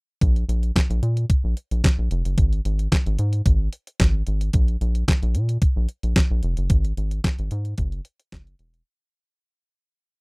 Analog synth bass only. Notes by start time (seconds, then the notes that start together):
0.21 A#1
0.49 A#1
0.90 A#1
1.03 A#2
1.44 A#1
1.71 A#1
1.98 A#1
2.11 F1
2.25 F#1
2.38 G#1
2.65 G#1
3.06 G#1
3.19 G#2
3.46 G#1
4.00 G#1
4.28 G#1
4.54 A#1
4.81 A#1
5.23 A#1
5.35 A#2
5.76 A#1
6.03 A#1
6.31 A#1
6.43 F1
6.58 F#1
6.70 G#1
6.97 G#1
7.39 G#1
7.52 G#2
7.78 F#1
8.32 F#1
8.59 E1